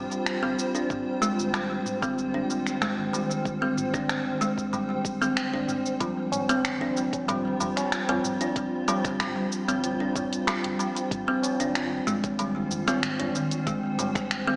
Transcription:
Already playing: kalimba G3, ambient pad G3 F4 C5 G5, singing bowl G3 G4
0.12 cabasa
0.26 finger snap, cabasa
0.43 sub bass G1, kalimba C4
0.59 cabasa
0.75 kalimba D4, cabasa
0.90 sub bass G#1, kick, mid tom, cabasa
1.22 kalimba G#3, cabasa
1.39 sub bass G#1, ambient pad D#3, cabasa
1.54 kalimba G3, finger snap, cabasa
1.86 mid tom, cabasa
2.02 sub bass G#1, kalimba C4, kick, cabasa
2.18 cabasa
2.34 kalimba D4
2.49 sub bass D#1, cabasa
2.67 finger snap, cabasa
2.82 kalimba G#3, finger snap, mid tom, cabasa
2.98 sub bass G#1
3.13 kalimba G3, cabasa
3.31 cabasa
3.45 sub bass G#1, kick, cabasa
3.62 kalimba C4
3.77 mid tom, cabasa
3.94 sub bass G#1, kalimba D4, finger snap, kick, cabasa
4.09 finger snap, cabasa
4.41 kalimba G#3, cabasa
4.58 sub bass G#1, kick, cabasa
4.73 kalimba G3, mid tom, cabasa
5.05 sub bass D#1, kick, cabasa
5.22 kalimba C4, cabasa
5.37 finger snap, cabasa
5.53 sub bass G#1, kalimba D4
5.68 mid tom, cabasa
5.86 cabasa
6.00 sub bass G1, singing bowl F3 F4, kalimba G3, ambient pad G3, kick, closed hi-hat, cabasa
6.25 ambient pad F4
6.32 closed hi-hat, mid tom, tabla na, cabasa
6.49 sub bass G1, kalimba C4, closed hi-hat, tabla tin, cabasa
6.65 finger snap, closed hi-hat, tabla na, cabasa
6.81 kalimba D4
6.97 cabasa
7.13 sub bass G1, kick, closed hi-hat, tabla tin, cabasa
7.28 kalimba G3, closed hi-hat, mid tom, tabla tin, cabasa
7.60 sub bass F1, kalimba G3, tabla ge, cabasa
7.77 finger snap, closed hi-hat, tabla na, cabasa
7.92 finger snap, closed hi-hat, cabasa
8.09 sub bass G1, kalimba C4, closed hi-hat, tabla na, tabla ge
8.24 mid tom, tabla tin, cabasa
8.41 kalimba D4, closed hi-hat, tabla na, cabasa
8.56 sub bass G1, kick, closed hi-hat, cabasa
8.88 kalimba G3, closed hi-hat, tabla na, cabasa
9.04 sub bass G1, finger snap, kick, closed hi-hat, cabasa
9.20 kalimba G3, finger snap, closed hi-hat, mid tom, cabasa
9.52 cabasa
9.68 sub bass G1, kalimba C4, closed hi-hat, tabla tin, cabasa
9.84 closed hi-hat, tabla tin, cabasa
10.00 kalimba D4
10.15 sub bass F1, kick, mid tom, tabla na, tabla tin, tabla ge, cabasa
10.33 closed hi-hat, cabasa
10.47 kalimba G3, finger snap, closed hi-hat, cabasa
10.64 sub bass G1, closed hi-hat
10.79 kalimba G3, cabasa
10.96 closed hi-hat, cabasa
11.11 sub bass G#1, kick, closed hi-hat, mid tom, cabasa
11.28 ambient pad D#3, kalimba C4
11.43 closed hi-hat, tabla na, cabasa
11.60 sub bass G#1, kalimba D4, closed hi-hat, tabla tin, cabasa
11.75 finger snap, closed hi-hat, tabla na, cabasa
11.96 ambient pad C5
12.07 kalimba G#3, mid tom, cabasa
12.24 sub bass G#1, kick, closed hi-hat, tabla tin, cabasa
12.39 kalimba G3, closed hi-hat, tabla tin, cabasa
12.58 ambient pad G5
12.71 sub bass D#1, tabla ge, cabasa
12.88 kalimba C4, finger snap, closed hi-hat, tabla na, cabasa
13.03 finger snap, closed hi-hat, mid tom, cabasa
13.19 sub bass G#1, kalimba D4, closed hi-hat, tabla na, tabla ge
13.35 tabla tin, cabasa
13.51 closed hi-hat, tabla na, cabasa
13.67 sub bass G#1, kalimba G#3, kick, closed hi-hat, cabasa
13.99 kalimba G3, closed hi-hat, mid tom, tabla na, cabasa
14.15 sub bass G#1, finger snap, kick, closed hi-hat, tabla tin, cabasa
14.31 finger snap, closed hi-hat, cabasa
14.47 kalimba C4

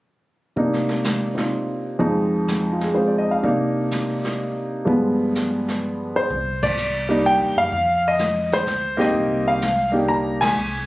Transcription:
0.56 grand piano C3 A#3 D4 D#4, brush sweep, kick
0.73 snare
0.89 snare
1.04 snare, hi-hat pedal
1.35 grand piano C4 D#4 F4, snare
1.99 grand piano F2 F3 G#3 D#4, brush sweep, kick
2.48 snare, hi-hat pedal
2.72 grand piano F4
2.81 grand piano G#4, snare
2.93 grand piano G#3 C4 F4 C5
3.07 grand piano D5
3.18 grand piano D#5
3.31 grand piano F5
3.43 grand piano C3 A#3 D4 D#4, brush sweep, kick
3.91 snare, hi-hat pedal
4.25 snare
4.85 grand piano G2 F3 G#3 B3, brush sweep, kick
5.35 snare, hi-hat pedal
5.68 snare
6.16 grand piano C5
6.30 upright bass C2, brush sweep, kick
6.63 grand piano D5, kick, ride
6.77 hi-hat pedal
7.09 grand piano G3 A#3 D4 D#4
7.26 grand piano G5
7.39 upright bass D#2
7.56 upright bass F#2, grand piano F5
7.72 upright bass F2, brush sweep, kick
8.08 grand piano D#5
8.19 snare, hi-hat pedal
8.52 grand piano C5, snare
8.66 upright bass D2, snare, hi-hat pedal
8.97 grand piano A#3 C4 D#4 G4 D#5, snare
9.14 upright bass C2, brush sweep, kick
9.48 grand piano F5
9.62 snare, hi-hat pedal
9.92 grand piano A#3 D4 D#4 G4
10.08 grand piano A#5
10.41 grand piano G#5, snare, ride
10.55 upright bass C2, brush sweep

